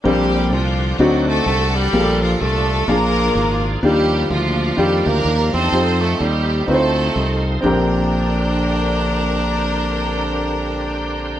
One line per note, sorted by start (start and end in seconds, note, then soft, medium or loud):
0.04 0.52 A#1 medium
0.04 0.76 A#2 medium
0.04 0.97 D3 medium
0.04 0.32 G3 medium
0.04 0.55 A#3 medium
0.04 0.97 A#3 soft
0.04 0.97 C4 soft
0.04 0.55 C4 medium
0.04 0.52 C4 medium
0.04 0.52 D4 medium
0.04 0.56 D4 medium
0.04 0.97 G4 medium
0.04 0.56 G4 medium
0.04 0.49 G4 medium
0.34 0.55 G3 medium
0.52 0.92 C2 medium
0.52 0.99 F3 medium
0.52 0.97 C4 soft
0.52 0.97 D4 medium
0.52 1.00 F4 medium
0.98 1.39 D2 medium
0.98 1.91 D3 soft
0.98 1.71 D3 medium
0.98 1.29 F#3 medium
0.98 1.90 A3 medium
0.98 1.91 C4 soft
0.98 1.50 C4 medium
0.98 1.27 C4 medium
0.98 1.50 D4 medium
0.98 1.50 D#4 medium
0.98 1.91 F#4 medium
0.98 1.51 F#4 medium
0.98 1.27 F#4 medium
0.98 1.91 D5 medium
1.28 1.46 A3 medium
1.28 1.90 C4 medium
1.28 1.90 F#4 medium
1.28 1.72 A4 medium
1.46 1.86 C2 medium
1.46 1.77 A3 medium
1.75 2.24 G3 medium
1.75 2.41 D4 medium
1.75 2.22 G4 medium
1.93 2.33 A#1 medium
1.93 2.65 A#2 soft
1.93 2.86 G3 medium
1.93 2.44 A#3 medium
1.93 2.86 D4 medium
1.93 2.44 F4 medium
1.93 2.86 F4 soft
1.93 2.45 G4 medium
1.93 2.01 G#4 medium
1.93 2.86 A4 medium
2.00 2.48 A4 medium
2.22 2.43 F3 medium
2.22 2.40 F4 medium
2.41 2.81 C2 medium
2.41 2.90 A3 medium
2.41 2.85 D4 medium
2.41 2.85 F4 medium
2.41 2.88 A4 medium
2.87 3.28 A#1 medium
2.87 3.60 A#2 medium
2.87 3.80 F3 medium
2.87 3.80 A#3 soft
2.87 3.39 A#3 medium
2.87 3.64 A#3 medium
2.87 3.80 D4 medium
2.87 3.39 D4 medium
2.87 3.79 D4 medium
2.87 3.39 F4 medium
2.87 3.79 F4 medium
2.87 3.80 G#4 medium
2.87 3.40 G#4 medium
2.87 3.63 A#4 medium
3.35 3.75 G#1 medium
3.81 4.23 D#2 medium
3.81 4.55 D#3 medium
3.81 5.68 F3 medium
3.81 5.68 G3 soft
3.81 4.32 G3 medium
3.81 4.34 A#3 medium
3.81 4.30 A#3 medium
3.81 5.69 D4 medium
3.81 4.34 D4 medium
3.81 4.30 D4 medium
3.81 5.68 F4 medium
3.81 4.34 F4 medium
3.81 4.27 G4 medium
3.81 4.34 G4 medium
4.30 4.70 D2 medium
4.30 4.78 F3 medium
4.30 4.77 A#3 medium
4.30 4.77 D4 soft
4.30 4.78 F4 medium
4.77 5.02 F2 medium
4.77 5.29 D#3 medium
4.77 5.08 G3 medium
4.77 5.69 A#3 medium
4.77 5.28 D4 medium
4.77 5.05 D4 medium
4.77 5.29 F4 medium
4.77 5.29 G4 medium
4.77 5.04 G4 medium
5.05 5.22 D2 medium
5.05 5.53 A#3 medium
5.05 5.69 D4 medium
5.05 5.68 G4 medium
5.05 5.53 A#4 medium
5.25 5.49 D#2 medium
5.53 5.70 E2 medium
5.53 6.03 C4 medium
5.53 6.20 D#4 medium
5.53 6.01 A4 medium
5.53 6.01 C5 loud
5.72 6.13 F2 medium
5.72 7.60 A3 soft
5.72 6.24 C4 medium
5.72 7.60 C4 soft
5.72 6.24 D#4 medium
5.72 7.60 D#4 medium
5.72 7.60 F4 medium
5.72 6.24 F4 medium
5.72 5.80 G4 medium
5.79 6.27 A4 medium
6.01 6.19 A3 medium
6.01 6.21 A4 medium
6.20 6.61 D#2 medium
6.20 6.70 G3 medium
6.20 6.67 C4 medium
6.20 6.67 D#4 medium
6.20 6.68 G4 medium
6.67 7.08 D2 medium
6.67 7.45 A3 medium
6.67 7.19 C4 medium
6.67 7.60 C4 medium
6.67 7.19 D#4 medium
6.67 7.60 D#4 medium
6.67 7.20 F4 medium
6.67 7.40 A4 medium
6.67 6.75 B4 medium
6.74 7.23 C5 medium
7.16 7.56 C2 medium
7.61 11.40 A#1 medium
7.61 11.40 D3 medium
7.61 11.40 A#3 medium
7.61 11.40 C4 medium
7.61 11.40 D4 medium
7.61 11.40 G4 medium
7.61 11.40 A#4 medium
7.66 11.40 A#4 medium